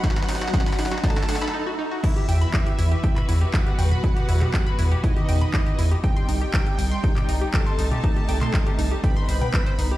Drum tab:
CC |--------------------------------|x-------------------------------|--------------------------------|--------------------------------|
HH |x-x-o-x-x-o-o-x-x-x-o-x---------|x-x-o-x-x-x-o-x-x-x-o-x-x-x-o---|x-x-o---x-x-o-x-x-x-o-x-x-x-o-x-|x-x-o---x-x-o-x-x-x-o-x-x-x-o-x-|
CP |--------------------------------|--------x---------x-----x-------|------x-x---------------x-------|--------x---------x-----x-------|
SD |oooooooooooooooooooooooo--------|--------------------------------|--------------------------------|--------------------------------|
T2 |------o-------o-----------------|------------------o-----------o-|------o---------------o---------|------------------o-----------o-|
BD |o-------o-------o---------------|o-------o-------o-------o-------|o-------o-------o-------o-------|o-------o-------o-------o-------|

CC |--------------------------------|
HH |x-x-o-x-x-x-o-x-x-x-o-x-x-x-o-x-|
CP |------x-x---------------x-------|
SD |--------------------------------|
T2 |------o---------------o---------|
BD |o-------o-------o-------o-------|